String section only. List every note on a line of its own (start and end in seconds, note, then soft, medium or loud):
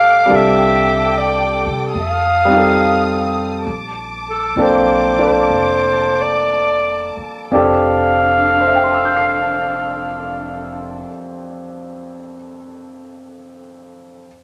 0.00 3.61 A4 medium
0.00 0.25 F5 medium
0.00 1.89 D6 medium
0.27 1.91 G5 medium
1.94 3.64 F5 medium
1.94 3.64 D#6 medium
3.65 7.46 A5 soft
3.65 7.47 D6 medium
7.50 11.01 D4 medium
7.50 11.01 A4 soft